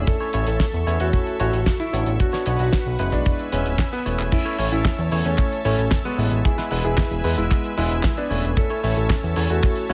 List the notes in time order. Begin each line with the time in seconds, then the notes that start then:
Already playing: A3 C#4 E4 C#5 E5 E6
0.07 A4 C#6, kick, closed hi-hat
0.20 A3 C#4 E4 C#5, closed hi-hat
0.33 A1 A3 C#4 E4 C#5, closed hi-hat
0.47 A1 A4, closed hi-hat
0.60 kick, snare, closed hi-hat
0.74 E2, closed hi-hat
0.87 E2 A3 C#4 E4 C#5, closed hi-hat
1.00 E2 F#4, closed hi-hat
1.13 kick, closed hi-hat
1.26 closed hi-hat
1.40 A1 A3 C#4 E4 F#4 C#5, closed hi-hat
1.53 A1, closed hi-hat
1.66 kick, snare, closed hi-hat
1.80 E4, closed hi-hat
1.93 A1 B3 D4 F#4 C#5, closed hi-hat
2.06 A1, closed hi-hat
2.20 F#4 B4 F#5, kick, closed hi-hat
2.32 B3 D4 F#4 C#5, snare, closed hi-hat
2.46 B1 B3 D4 F#4 C#5, closed hi-hat
2.59 B1 F#4, closed hi-hat
2.73 kick, snare, closed hi-hat
2.86 B1, closed hi-hat
2.99 F#1 G#3 B3 E4 B4, closed hi-hat
3.12 B1 D4, kick, closed hi-hat
3.25 E5 G#5 E6, kick, closed hi-hat
3.39 closed hi-hat
3.52 E1 G#3 B3 C#4 E4 B4, closed hi-hat
3.66 D1, closed hi-hat
3.78 kick, snare, clap, closed hi-hat
3.92 B3, closed hi-hat
4.06 E1 A3 C#4 E4 C#5, closed hi-hat
4.19 E1, clap, closed hi-hat
4.32 C#4 E4 C#5 E5 A5 E6, kick, closed hi-hat, crash
4.45 A3 C#4 E4 C#5, closed hi-hat
4.58 A1 A3 C#4 E4 C#5, open hi-hat
4.72 A1 C#4 E4, closed hi-hat
4.85 kick, snare, clap, closed hi-hat
4.98 E2, closed hi-hat
5.11 E2 A3 C#4 E4 C#5, open hi-hat
5.25 E2 A3 C#4, closed hi-hat
5.38 kick, clap, closed hi-hat
5.52 closed hi-hat
5.65 A1 A3 C#4 E4 C#5, open hi-hat
5.78 A1, closed hi-hat
5.91 kick, snare, clap, closed hi-hat
6.05 G#3 B3, closed hi-hat
6.18 A1 G#3 B3 E4 B4, open hi-hat
6.31 A1, closed hi-hat
6.45 E4 G#4 B4 G#5, kick, closed hi-hat
6.58 G#3 B3 E4 B4, snare, closed hi-hat
6.71 E1 G#3 B3 E4 B4, open hi-hat
6.84 E1 E4 G#4, closed hi-hat
6.97 kick, snare, clap, closed hi-hat
7.11 E1, closed hi-hat
7.24 E2 G#3 B3 E4 B4, open hi-hat
7.37 E1 G#3 E4, closed hi-hat
7.51 kick, clap, closed hi-hat
7.64 closed hi-hat
7.77 E1 G#3 B3 E4 B4, open hi-hat
7.91 E1, closed hi-hat
8.03 kick, snare, clap, closed hi-hat
8.17 B3 D4, closed hi-hat
8.30 E1 A3 C#4 E4 C#5, open hi-hat
8.44 E1, closed hi-hat
8.57 C#4 A4 C#5 A5, kick, closed hi-hat
8.70 A3 C#4 E4 C#5, closed hi-hat
8.83 A1 A3 C#4 E4 C#5, open hi-hat
8.97 A1 C#4 A4, closed hi-hat
9.09 kick, snare, clap, closed hi-hat
9.23 E2, closed hi-hat
9.36 E2 A3 C#4 E4 C#5, open hi-hat
9.49 E2 A3 F#4, closed hi-hat
9.63 kick, clap, closed hi-hat
9.75 closed hi-hat
9.89 A1 A3 C#4 E4 F#4 C#5, open hi-hat